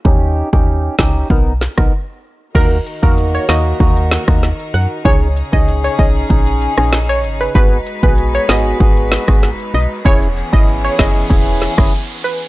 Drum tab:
CC |----------------|x---------------|----------------|----------------|
HH |----------------|x-x-xxx-xxx-xxx-|x-x-xxx-xxx-xxx-|x-x-xxx-xxx-xxx-|
SD |------o---or----|------o---oro---|-----------ro---|------o---oro---|
BD |o--o--o-o--o----|o--o----o--o----|o--o--o-o-------|o--o----o--o----|

CC |----------------|
HH |xxx-xxx-xxx-----|
SD |------o---or----|
BD |o--o--o-o--o----|